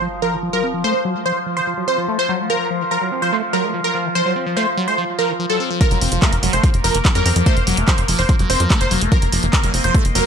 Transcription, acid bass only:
0.01 0.08 F3 medium
0.22 0.34 F3 medium
0.33 0.37 D#3 medium
0.43 0.50 F3 medium
0.53 0.63 F#3 medium
0.64 0.73 C4 medium
0.74 0.84 F3 medium
0.84 0.94 A3 loud
1.05 1.17 F#3 loud
1.15 1.25 A3 loud
1.26 1.32 F3 medium
1.46 1.58 F3 medium
1.57 1.61 D#3 medium
1.67 1.74 F3 medium
1.77 1.87 F#3 medium
1.88 1.97 C4 medium
1.98 2.08 F3 medium
2.08 2.18 A3 loud
2.29 2.41 F#3 loud
2.39 2.49 A3 loud
2.50 2.57 F3 medium
2.70 2.82 F3 medium
2.81 2.85 D#3 medium
2.91 2.98 F3 medium
3.01 3.11 F#3 medium
3.12 3.22 C4 medium
3.22 3.32 F3 medium
3.33 3.42 A3 loud
3.53 3.65 F#3 loud
3.64 3.73 A3 loud
3.74 3.81 F3 medium
3.95 4.06 F3 medium
4.05 4.09 D#3 medium
4.15 4.22 F3 medium
4.26 4.35 F#3 medium
4.36 4.46 C4 medium
4.46 4.56 F3 medium
4.57 4.66 A3 loud
4.77 4.89 F#3 loud
4.88 4.97 A3 loud
4.98 5.05 F3 medium
5.19 5.31 F3 medium
5.29 5.33 D#3 medium
5.39 5.46 F3 medium
5.50 5.60 F#3 medium
5.60 5.70 C4 medium
5.70 5.80 F3 medium
5.81 5.88 F3 medium
5.91 6.01 F#3 medium
6.01 6.11 C4 medium
6.12 6.22 F3 medium
6.22 6.32 A3 loud
6.43 6.55 F#3 loud
6.53 6.63 A3 loud
6.64 6.70 F3 medium
6.84 6.96 F3 medium
6.95 6.99 D#3 medium
7.05 7.12 F3 medium
7.15 7.25 F#3 medium
7.26 7.35 C4 medium
7.36 7.46 F3 medium
7.46 7.56 A3 loud
7.67 7.79 F#3 loud
7.77 7.87 A3 loud
7.88 7.94 F3 medium
8.08 8.20 F3 medium
8.19 8.23 D#3 medium
8.29 8.36 F3 medium
8.39 8.49 F#3 medium
8.50 8.60 C4 medium
8.60 8.70 F3 medium
8.70 8.80 A3 loud
8.91 9.03 F#3 loud
9.01 9.11 A3 loud
9.12 9.19 F3 medium
9.32 9.44 F3 medium
9.43 9.47 D#3 medium
9.53 9.60 F3 medium
9.64 9.73 F#3 medium
9.74 9.84 C4 medium
9.84 9.94 F3 medium
9.95 10.04 A3 loud
10.15 10.26 F#3 loud

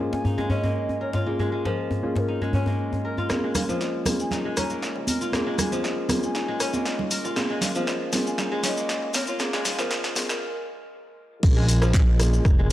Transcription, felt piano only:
0.00 1.24 A#3 medium
0.00 1.24 C#4 medium
0.00 1.24 F4 medium
0.00 1.24 G#4 medium
1.26 2.00 A#3 medium
1.26 2.00 C#4 medium
1.26 2.00 F4 medium
1.26 2.00 G#4 medium
2.03 3.27 A#3 medium
2.03 3.27 C#4 medium
2.03 3.27 F4 medium
2.03 3.27 G#4 medium
3.30 4.03 A#3 medium
3.30 4.03 C#4 medium
3.30 4.03 F4 medium
3.30 4.03 G#4 medium
4.06 5.30 A#3 medium
4.06 5.30 C#4 medium
4.06 5.30 F4 medium
4.06 5.30 G#4 loud
5.33 6.07 A#3 medium
5.33 6.07 C#4 medium
5.33 6.07 F4 medium
5.33 6.07 G#4 medium
6.09 7.34 A#3 medium
6.09 7.34 C#4 medium
6.09 7.34 F4 medium
6.09 7.34 G#4 medium
7.37 8.10 A#3 medium
7.37 8.10 C#4 medium
7.37 8.10 F4 medium
7.37 8.10 G#4 medium
8.13 9.37 A#3 medium
8.13 9.37 C#4 medium
8.13 9.37 F4 medium
8.13 9.37 G#4 loud
9.40 10.13 A#3 medium
9.40 10.13 C#4 medium
9.40 10.13 F4 medium
9.40 10.13 G#4 medium
10.16 10.42 A#3 medium
10.16 10.42 C#4 medium
10.16 10.42 F4 medium
10.16 10.42 G#4 loud
11.43 12.17 A#3 medium
11.43 12.17 C#4 medium
11.43 12.17 F4 medium
11.43 12.17 G#4 medium
12.20 12.72 A#3 medium
12.20 12.72 C#4 medium
12.20 12.72 F4 medium
12.20 12.72 G#4 loud

